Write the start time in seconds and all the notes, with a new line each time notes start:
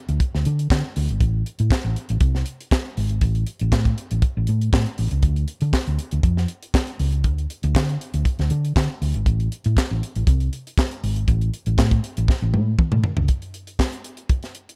0.09 D2, closed hi-hat
0.20 kick, closed hi-hat
0.35 D2, snare
0.45 D3, closed hi-hat
0.59 closed hi-hat
0.70 D3, kick, snare, clap
0.96 D2, open hi-hat
1.09 G#1, closed hi-hat
1.21 A1, kick, closed hi-hat
1.46 closed hi-hat
1.59 A2, closed hi-hat
1.71 kick, snare, clap
1.85 A1
1.96 closed hi-hat
2.09 A1, closed hi-hat
2.20 C2, kick, closed hi-hat
2.35 snare
2.46 closed hi-hat
2.61 closed hi-hat
2.71 kick, snare, clap
2.97 G#1, open hi-hat
3.10 closed hi-hat
3.21 A1, kick, closed hi-hat
3.35 closed hi-hat
3.47 closed hi-hat
3.59 A1, closed hi-hat
3.72 A2, kick, snare, clap
3.85 kick, closed hi-hat
3.98 closed hi-hat
4.11 A1, closed hi-hat
4.22 kick, closed hi-hat
4.37 A1
4.47 A2, closed hi-hat
4.61 closed hi-hat
4.73 A2, kick, snare, clap
4.86 closed hi-hat
4.98 A1, open hi-hat
5.11 C#2, closed hi-hat
5.23 D2, kick, closed hi-hat
5.36 closed hi-hat
5.48 closed hi-hat
5.61 D3, closed hi-hat
5.73 kick, snare, clap
5.87 D2, closed hi-hat
5.99 closed hi-hat
6.11 D2, closed hi-hat
6.23 F2, kick, closed hi-hat
6.37 snare
6.48 closed hi-hat
6.63 closed hi-hat
6.74 kick, snare, clap
6.87 closed hi-hat
6.99 C#2, open hi-hat
7.12 closed hi-hat
7.24 D2, kick, closed hi-hat
7.38 closed hi-hat
7.50 closed hi-hat
7.63 D2, closed hi-hat
7.75 D3, kick, snare, clap
7.89 closed hi-hat
8.01 closed hi-hat
8.14 D2, closed hi-hat
8.25 kick, closed hi-hat
8.39 D2, snare, closed hi-hat
8.50 D3, closed hi-hat
8.65 closed hi-hat
8.76 D3, kick, snare, clap
9.02 D2, open hi-hat
9.14 G#1, closed hi-hat
9.26 A1, kick, closed hi-hat
9.40 closed hi-hat
9.52 closed hi-hat
9.64 A2, closed hi-hat
9.77 kick, snare, clap
9.91 A1
10.03 closed hi-hat
10.16 A1, closed hi-hat
10.27 C2, kick, closed hi-hat
10.40 closed hi-hat
10.53 closed hi-hat
10.67 closed hi-hat
10.78 kick, snare, clap
10.91 closed hi-hat
11.03 G#1, open hi-hat
11.16 closed hi-hat
11.28 A1, kick, closed hi-hat
11.41 closed hi-hat
11.54 closed hi-hat
11.66 A1, closed hi-hat
11.78 A2, kick, snare, clap
11.91 kick, closed hi-hat
12.04 closed hi-hat
12.17 A1, closed hi-hat
12.28 kick, snare
12.42 A1
12.54 A2, high tom
12.79 kick, mid tom
12.92 A2, mid tom
13.04 floor tom
13.17 C#2, floor tom
13.28 kick, closed hi-hat
13.42 closed hi-hat
13.54 closed hi-hat
13.67 closed hi-hat
13.79 kick, snare, clap
13.92 closed hi-hat
14.04 closed hi-hat
14.17 closed hi-hat
14.29 kick, closed hi-hat
14.43 snare, closed hi-hat
14.55 closed hi-hat
14.69 closed hi-hat